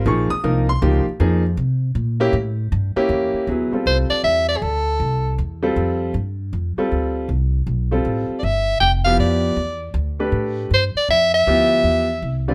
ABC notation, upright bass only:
X:1
M:3/4
L:1/8
Q:"Swing" 1/4=158
K:Bbdor
V:1 name="Upright bass" clef=bass
B,,, z C,,2 D,, z | F,,2 C,2 B,,2 | =A,,2 G,, z =E,, z | [K:Ddor] D,, z C,, z E,,2 |
D,,2 C,,2 E,,2 | F,,2 G,,2 F,, z | D,,2 C,,2 B,,,2 | A,,, z G,,,2 F,,,2 |
F,,2 E,,2 D,,2 | A,,2 G,, z F,,2 | D,,2 E,,2 C,,2 |]